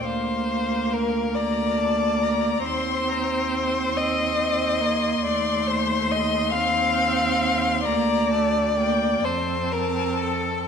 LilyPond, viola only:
\new Staff \with { instrumentName = "Viola" } { \time 6/8 \key bes \major \tempo 4. = 46 bes4. bes4. | c'4. c'8 c'8 bes8 | a4. c'4. | bes8 a8 bes8 c'4. | }